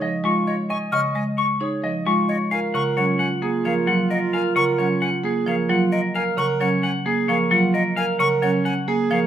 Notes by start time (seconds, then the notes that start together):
0.02 F3 D#5
0.24 G#3 F4 C#6
0.47 C#5 D#5
0.70 D#5 G#5 C#6
0.92 C#3 D#5 C#6 F6
1.15 G#3 D#5 G#5
1.38 C#6
1.61 D#4 G#4 C#5
1.83 F3 D#5
2.06 G#3 F4 C#6
2.28 C#5 D#5
2.51 F4 A#4 F5 G#5
2.74 C#3 A#4 F#5 C#6
2.97 F#3 C#4 C#5 F#5
3.19 F#5 G#5
3.42 A#3 G#4
3.65 F3 A#4 C#5 F5
3.87 F#3 F4 F#5
4.10 A#4 D#5
4.33 A#4 F5 G#5
4.56 C#3 A#4 F#5 C#6
4.78 F#3 C#4 C#5 F#5
5.01 F#5 G#5
5.24 A#3 G#4
5.46 F3 A#4 C#5 F5
5.69 F#3 F4 F#5
5.92 A#4 D#5
6.15 A#4 F5 G#5
6.37 C#3 A#4 F#5 C#6
6.60 F#3 C#4 C#5 F#5
6.83 F#5 G#5
7.06 A#3 G#4
7.28 F3 A#4 C#5 F5
7.51 F#3 F4 F#5
7.74 A#4 D#5
7.96 A#4 F5 G#5
8.19 C#3 A#4 F#5 C#6
8.42 F#3 C#4 C#5 F#5
8.65 F#5 G#5
8.88 A#3 G#4
9.11 F3 A#4 C#5 F5